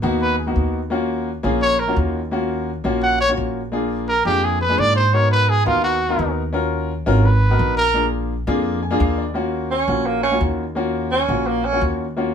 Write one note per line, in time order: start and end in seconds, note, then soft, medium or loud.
0.02 0.52 D#2 medium
0.02 0.34 A#3 loud
0.02 0.34 B3 medium
0.02 0.34 D#4 medium
0.02 0.34 F#4 loud
0.22 0.38 B4 medium
0.39 0.47 G#4 medium
0.46 0.78 A#3 medium
0.46 0.78 B3 medium
0.46 0.78 D#4 medium
0.46 0.78 F#4 medium
0.56 1.38 D#2 medium
0.90 1.28 A#3 medium
0.90 1.28 C#4 medium
0.90 1.28 F4 medium
0.90 1.28 F#4 loud
1.43 1.93 A#1 medium
1.43 1.74 A#3 loud
1.43 1.75 C#4 medium
1.43 1.75 F4 medium
1.43 1.75 G#4 loud
1.62 1.81 C#5 loud
1.79 1.97 A#4 medium
1.87 2.18 A#3 medium
1.87 2.19 C#4 medium
1.87 2.19 F4 medium
1.87 2.19 F#4 medium
1.96 2.79 D#2 loud
2.31 2.69 A#3 medium
2.31 2.69 C#4 medium
2.31 2.69 F4 medium
2.31 2.69 F#4 loud
2.84 3.34 A#1 medium
2.84 3.15 A#3 loud
2.84 3.15 C#4 medium
2.84 3.16 F4 medium
2.84 3.16 F#4 loud
3.03 3.19 F#5 medium
3.21 3.31 C#5 loud
3.28 3.59 A#3 medium
3.28 3.60 C#4 medium
3.28 3.60 F4 medium
3.28 3.60 F#4 medium
3.37 4.20 A#1 medium
3.72 4.09 A#3 medium
3.72 4.09 D4 medium
3.72 4.10 F4 medium
3.72 4.10 G#4 loud
4.08 4.25 A#4 medium
4.25 4.74 F2 medium
4.25 4.56 A#3 medium
4.25 4.56 D4 medium
4.25 4.56 F4 medium
4.25 4.46 G4 loud
4.25 4.57 G#4 medium
4.44 4.61 G#4 medium
4.61 4.81 B4 loud
4.69 5.00 A#3 medium
4.69 5.00 D4 medium
4.69 5.00 F4 medium
4.69 5.01 G#4 medium
4.78 5.60 G#2 medium
4.78 4.96 D5 loud
4.96 5.15 C5 medium
5.13 5.50 B3 medium
5.13 5.50 D#4 medium
5.13 5.51 F#4 medium
5.13 5.51 A#4 medium
5.13 5.31 C#5 medium
5.31 5.51 B4 medium
5.50 5.66 G#4 medium
5.65 6.15 D#2 medium
5.65 5.96 B3 medium
5.65 5.97 D#4 medium
5.65 5.83 F4 medium
5.65 5.97 F#4 medium
5.65 5.97 A#4 medium
5.84 6.33 F#4 medium
6.09 6.40 B3 medium
6.09 6.40 D#4 medium
6.09 6.41 F#4 medium
6.09 6.41 A#4 medium
6.19 7.01 D#2 loud
6.53 6.90 C#4 medium
6.53 6.90 F4 medium
6.53 6.91 F#4 medium
6.53 6.91 A#4 loud
7.06 7.56 G#1 medium
7.06 7.24 C#4 loud
7.06 7.24 F4 medium
7.06 7.24 F#4 medium
7.06 7.25 A#4 loud
7.25 7.74 B4 medium
7.50 7.81 B3 medium
7.50 7.81 D#4 medium
7.50 7.82 F#4 medium
7.50 7.82 A#4 medium
7.59 8.42 A#1 loud
7.77 8.10 A#4 loud
7.94 8.31 A#3 medium
7.94 8.31 D4 medium
7.94 8.32 F4 medium
7.94 8.32 G#4 medium
8.47 8.96 F2 medium
8.47 8.78 A#3 loud
8.47 8.78 D4 medium
8.47 8.78 F4 medium
8.47 8.79 G#4 loud
8.82 8.99 G#5 medium
8.90 9.22 A#3 loud
8.90 9.22 D4 medium
8.90 9.22 F4 medium
8.90 9.22 G#4 loud
9.00 9.82 D#2 loud
9.00 9.17 F5 medium
9.18 9.34 D5 medium
9.34 9.72 A#3 medium
9.34 9.72 C#4 medium
9.34 9.72 F4 medium
9.34 9.72 F#4 loud
9.71 10.08 C#4 medium
9.88 10.37 A#1 medium
9.88 10.19 A#3 medium
9.88 10.19 C#4 medium
9.88 10.19 F4 medium
9.88 10.19 F#4 medium
10.06 10.23 A#3 medium
10.23 10.40 C#4 medium
10.31 10.62 A#3 medium
10.31 10.63 C#4 medium
10.31 10.63 F4 medium
10.31 10.63 F#4 medium
10.41 11.23 D#2 medium
10.75 11.13 A#3 medium
10.75 11.13 C#4 medium
10.75 11.13 F4 medium
10.75 11.13 F#4 loud
11.11 11.48 C#4 medium
11.28 11.78 A#1 medium
11.28 11.59 A#3 medium
11.28 11.60 C#4 medium
11.28 11.60 F4 medium
11.28 11.60 F#4 medium
11.47 11.66 A#3 medium
11.65 11.82 C#4 medium
11.72 12.04 A#3 medium
11.72 12.04 C#4 medium
11.72 12.04 F4 medium
11.72 12.04 F#4 medium
11.81 12.34 D#2 medium
12.16 12.34 A#3 medium
12.16 12.34 C#4 medium
12.16 12.34 F4 medium
12.16 12.34 F#4 medium